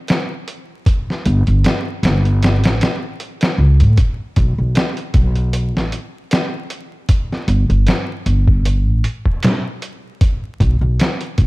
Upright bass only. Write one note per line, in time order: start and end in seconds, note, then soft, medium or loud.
1.26 1.44 G1 medium
1.48 1.63 G1 medium
2.03 2.63 G1 medium
2.63 2.79 A1 medium
3.58 3.82 C#2 medium
3.81 3.96 A2 medium
4.37 4.56 B1 medium
4.58 4.74 B1 medium
5.15 5.75 B1 medium
5.75 5.90 A1 medium
7.48 7.67 G1 medium
7.69 7.85 G1 medium
8.26 8.87 G1 medium
8.87 9.02 A1 medium
10.61 10.79 B1 medium
10.81 10.97 B1 medium
11.38 11.47 B1 medium